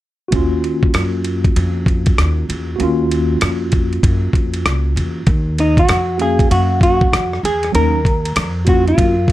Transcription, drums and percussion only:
0.32 kick medium
0.32 ride medium
0.64 ride soft
0.83 kick medium
0.94 cross-stick loud
0.94 hi-hat pedal medium
0.94 ride medium
1.25 ride soft
1.44 kick medium
1.44 ride soft
1.56 ride medium
1.86 kick medium
1.86 ride soft
2.06 kick medium
2.06 ride soft
2.18 cross-stick loud
2.18 hi-hat pedal soft
2.18 ride medium
2.50 ride medium
2.80 ride medium
3.11 ride soft
3.41 cross-stick loud
3.41 hi-hat pedal medium
3.41 ride medium
3.72 kick medium
3.72 ride soft
3.93 ride soft
4.03 kick medium
4.03 ride medium
4.33 kick medium
4.33 ride soft
4.54 ride soft
4.66 cross-stick loud
4.66 hi-hat pedal soft
4.66 ride medium
4.97 ride medium
5.27 kick loud
5.27 ride medium
5.58 ride soft
5.77 kick medium
5.77 ride soft
5.89 cross-stick loud
5.89 hi-hat pedal medium
5.89 ride medium
6.19 ride medium
6.39 kick medium
6.39 ride soft
6.51 ride medium
6.81 kick medium
6.81 ride soft
7.01 kick medium
7.13 cross-stick loud
7.13 hi-hat pedal soft
7.13 ride medium
7.33 cross-stick soft
7.45 ride medium
7.63 cross-stick soft
7.63 ride soft
7.75 ride medium
8.05 kick medium
8.05 ride soft
8.25 ride soft
8.36 cross-stick loud
8.36 hi-hat pedal medium
8.36 ride medium
8.67 kick medium
8.67 ride medium
8.88 ride soft
8.98 kick medium
8.98 ride medium
9.28 kick medium

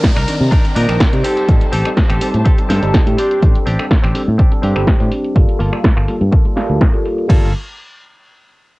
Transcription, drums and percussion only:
0.04 kick loud
0.04 snare loud
0.04 closed hi-hat medium
0.16 finger snap medium
0.16 closed hi-hat medium
0.16 tambourine soft
0.28 open hi-hat loud
0.41 tambourine medium
0.52 kick loud
0.52 closed hi-hat medium
0.64 closed hi-hat soft
0.64 tambourine soft
0.76 open hi-hat loud
0.89 finger snap medium
0.89 closed hi-hat soft
0.89 tambourine medium
1.00 kick loud
1.00 snare loud
1.00 closed hi-hat medium
1.00 tambourine medium
1.13 closed hi-hat medium
1.13 tambourine soft
1.25 open hi-hat loud
1.37 closed hi-hat soft
1.37 tambourine medium
1.48 kick loud
1.48 closed hi-hat medium
1.48 tambourine medium
1.61 closed hi-hat medium
1.61 tambourine soft
1.73 open hi-hat loud
1.85 finger snap medium
1.85 closed hi-hat soft
1.85 tambourine medium
1.97 kick loud
1.97 snare loud
1.97 closed hi-hat medium
2.10 finger snap medium
2.10 closed hi-hat medium
2.10 tambourine soft
2.21 open hi-hat loud
2.34 closed hi-hat soft
2.34 tambourine medium
2.45 kick loud
2.45 closed hi-hat medium
2.45 tambourine medium
2.58 closed hi-hat medium
2.58 tambourine soft
2.70 snare medium
2.70 open hi-hat loud
2.82 closed hi-hat soft
2.82 tambourine medium
2.94 kick loud
2.94 snare loud
2.94 closed hi-hat medium
3.06 closed hi-hat medium
3.06 tambourine soft
3.18 open hi-hat loud
3.31 closed hi-hat soft
3.31 tambourine medium
3.42 kick loud
3.42 closed hi-hat medium
3.55 closed hi-hat medium
3.67 open hi-hat loud
3.79 finger snap medium
3.79 closed hi-hat soft
3.91 kick loud
3.91 snare loud
3.91 closed hi-hat medium
4.04 finger snap medium
4.04 closed hi-hat soft
4.15 open hi-hat loud
4.39 kick loud
4.39 closed hi-hat medium
4.52 closed hi-hat soft
4.63 open hi-hat loud
4.76 finger snap medium
4.76 closed hi-hat soft
4.87 kick loud
4.87 snare loud
4.87 closed hi-hat medium
5.00 closed hi-hat medium
5.12 open hi-hat loud
5.25 closed hi-hat soft
5.36 kick loud
5.36 closed hi-hat medium
5.49 closed hi-hat soft
5.60 open hi-hat loud
5.73 finger snap medium
5.73 closed hi-hat soft
5.84 kick loud
5.84 snare loud
5.84 closed hi-hat medium
5.97 finger snap medium
5.97 closed hi-hat soft
6.08 open hi-hat loud
6.21 closed hi-hat soft
6.33 kick loud
6.33 closed hi-hat medium
6.45 closed hi-hat soft
6.57 snare medium
6.57 open hi-hat loud
6.70 closed hi-hat soft
6.81 kick loud
6.81 snare loud
6.81 closed hi-hat medium
6.94 closed hi-hat soft
7.05 open hi-hat loud
7.18 closed hi-hat soft
7.29 kick loud
7.29 crash medium

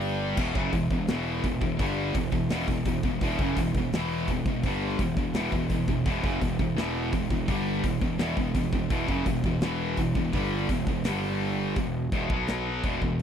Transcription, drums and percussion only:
0.01 open hi-hat medium
0.37 kick loud
0.37 crash loud
0.55 kick loud
0.72 kick medium
0.72 open hi-hat medium
0.91 kick medium
1.07 snare loud
1.07 open hi-hat medium
1.44 kick medium
1.44 open hi-hat medium
1.61 kick loud
1.79 kick loud
1.79 open hi-hat medium
2.14 kick medium
2.14 open hi-hat medium
2.32 kick loud
2.49 snare loud
2.49 open hi-hat loud
2.68 kick loud
2.85 kick loud
2.85 open hi-hat medium
3.03 kick loud
3.21 kick loud
3.21 open hi-hat medium
3.39 kick loud
3.56 kick medium
3.56 open hi-hat medium
3.75 kick medium
3.92 snare loud
3.92 open hi-hat medium
4.28 kick medium
4.28 open hi-hat medium
4.46 kick loud
4.63 kick loud
4.63 open hi-hat medium
4.99 kick loud
4.99 open hi-hat medium
5.17 kick loud
5.34 snare loud
5.34 open hi-hat medium
5.52 kick loud
5.69 kick medium
5.69 open hi-hat medium
5.88 kick loud
6.06 kick loud
6.06 open hi-hat medium
6.24 kick loud
6.41 kick medium
6.41 open hi-hat medium
6.59 kick medium
6.77 snare loud
6.77 open hi-hat medium
7.13 kick medium
7.13 open hi-hat medium
7.30 kick loud
7.48 kick loud
7.48 open hi-hat medium
7.84 kick medium
7.84 open hi-hat medium
8.01 kick loud
8.18 snare loud
8.18 open hi-hat medium
8.37 kick medium
8.54 kick loud
8.54 open hi-hat medium
8.73 kick loud
8.90 kick loud
8.90 open hi-hat medium
9.08 kick loud
9.26 kick medium
9.26 open hi-hat medium
9.44 kick medium
9.61 snare loud
9.61 open hi-hat medium
9.97 kick medium
9.97 open hi-hat medium
10.15 kick medium
10.33 kick loud
10.33 open hi-hat medium
10.69 kick medium
10.69 open hi-hat medium
10.87 kick loud
11.04 snare loud
11.04 open hi-hat loud
11.40 open hi-hat medium
11.76 kick medium
11.76 open hi-hat medium
12.12 kick loud
12.12 open hi-hat medium
12.30 kick loud
12.47 snare loud
12.47 open hi-hat medium
12.84 kick loud
12.84 open hi-hat medium
13.02 kick medium

